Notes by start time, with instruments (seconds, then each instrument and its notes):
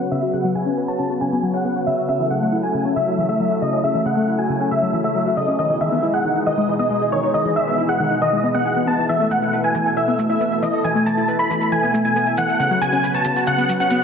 Already playing: analog synth pad C#3 F#3 B3 F#4 B4
0.01 synth pluck C#5
0.12 synth pluck C#3 E5, supersaw synth E5
0.23 synth pluck F#4
0.33 synth pluck C#3 F#5, supersaw synth F#5
0.44 synth pluck F#3
0.55 synth pluck C#3 G#5, supersaw synth G#5
0.66 synth pluck C#4
0.77 synth pluck B4
0.88 synth pluck C#5 A5, supersaw synth A5
0.99 synth pluck C#3
1.10 synth pluck F#4
1.21 synth pluck C#3 G#5, supersaw synth G#5
1.32 synth pluck B3
1.43 synth pluck F#3
1.54 synth pluck C#4 F#5, supersaw synth F#5
1.65 synth pluck B3
1.76 synth pluck C#5
1.87 synth pluck C#3 E5, supersaw synth E5
1.98 synth pluck F#4
2.09 synth pluck C#3 E5, analog synth pad A3 E4 A4, supersaw synth E5
2.20 synth pluck E3
2.30 synth pluck C#3 F#5, supersaw synth F#5
2.41 synth pluck A3
2.52 synth pluck E4
2.63 synth pluck F#4 G#5, supersaw synth G#5
2.74 synth pluck C#3
2.85 synth pluck C#4
2.96 synth pluck C#3 E5, supersaw synth E5
3.07 synth pluck F#3
3.18 synth pluck E3
3.29 synth pluck A3 E5, supersaw synth E5
3.40 synth pluck F#3
3.51 synth pluck F#4
3.62 synth pluck C#3 D#5, supersaw synth D#5
3.73 synth pluck C#4
3.84 synth pluck C#3 E5, supersaw synth E5
3.95 synth pluck E3
4.06 synth pluck C#3 F#5, supersaw synth F#5
4.17 synth pluck A3
4.28 synth pluck E4
4.38 synth pluck F#4 G#5, supersaw synth G#5
4.49 synth pluck C#3
4.60 synth pluck C#4
4.71 synth pluck C#3 E5, supersaw synth E5
4.82 synth pluck F#3
4.93 synth pluck E3
5.04 synth pluck A3 E5, supersaw synth E5
5.15 synth pluck F#3
5.26 synth pluck F#4
5.37 synth pluck C#3 D#5, supersaw synth D#5
5.48 synth pluck C#4
5.59 analog synth pad B2 E3 G#3 D#4 G#4, synth pluck D#3 D#5, supersaw synth D#5
5.70 synth pluck E3
5.81 synth pluck D#3 E5, supersaw synth E5
5.92 synth pluck B3
6.03 synth pluck E4
6.14 synth pluck G#4 F#5, supersaw synth F#5
6.25 synth pluck D#3
6.36 synth pluck D#4
6.46 synth pluck D#3 D#5, supersaw synth D#5
6.58 synth pluck G#3
6.68 synth pluck E3
6.79 synth pluck B3 D#5, supersaw synth D#5
6.90 synth pluck G#3
7.01 synth pluck G#4
7.12 synth pluck D#3 C#5, supersaw synth C#5
7.23 synth pluck D#4
7.34 synth pluck D#3 D#5, supersaw synth D#5
7.45 synth pluck E3
7.56 synth pluck D#3 E5, supersaw synth E5
7.67 synth pluck B3
7.78 synth pluck E4
7.89 synth pluck G#4 F#5, supersaw synth F#5
8.00 synth pluck D#3
8.11 synth pluck D#4
8.22 synth pluck D#3 D#5, supersaw synth D#5
8.33 synth pluck G#3
8.44 synth pluck B3
8.55 synth pluck B3 F#5, supersaw synth F#5
8.66 synth pluck G#4
8.76 synth pluck B3
8.87 synth pluck B3 A5, supersaw synth A5
8.98 synth pluck E3
9.09 synth pluck E3 E5, analog synth pad A3 E4 A4, supersaw synth E5, maracas
9.20 synth pluck A3, maracas
9.31 synth pluck E3 F#5, supersaw synth F#5, maracas
9.42 synth pluck E4, maracas
9.53 synth pluck B4, maracas
9.64 synth pluck E5 G#5, supersaw synth G#5, maracas
9.74 synth pluck E3, maracas
9.86 synth pluck A4, maracas
9.97 synth pluck E3 E5, supersaw synth E5, maracas
10.08 synth pluck B3, maracas
10.19 synth pluck A3, maracas
10.30 synth pluck E4 E5, supersaw synth E5, maracas
10.40 synth pluck B3, maracas
10.52 synth pluck E5, maracas
10.63 synth pluck E3 D#5, supersaw synth D#5, maracas
10.73 synth pluck A4, maracas
10.84 synth pluck E3 G#5, supersaw synth G#5, maracas
10.95 synth pluck A3, maracas
11.06 synth pluck E3 A5, supersaw synth A5, maracas
11.17 synth pluck E4, maracas
11.28 synth pluck B4, maracas
11.39 synth pluck E5 B5, supersaw synth B5, maracas
11.50 synth pluck E3, maracas
11.61 synth pluck A4, maracas
11.72 synth pluck E3 G#5, supersaw synth G#5, maracas
11.83 synth pluck B3, maracas
11.94 synth pluck A3, maracas
12.05 synth pluck E4 G#5, supersaw synth G#5, maracas
12.16 synth pluck B3, maracas
12.27 synth pluck E5, maracas
12.37 synth pluck E3 F#5, supersaw synth F#5, maracas
12.49 synth pluck A4, maracas
12.60 analog synth pad C#3 F#3 B3 F#4 B4, synth pluck C#3 F#5, supersaw synth F#5, maracas
12.71 synth pluck F#3, maracas
12.81 synth pluck C#3 G#5, supersaw synth G#5, maracas
12.92 synth pluck C#4, maracas
13.03 synth pluck B4, maracas
13.14 synth pluck C#5 A5, supersaw synth A5, maracas
13.24 synth pluck C#3, maracas
13.36 synth pluck F#4, maracas
13.46 synth pluck C#3 F#5, supersaw synth F#5, maracas
13.58 synth pluck B3, maracas
13.69 synth pluck F#3, maracas
13.80 synth pluck C#4 F#5, supersaw synth F#5, maracas
13.90 synth pluck B3, maracas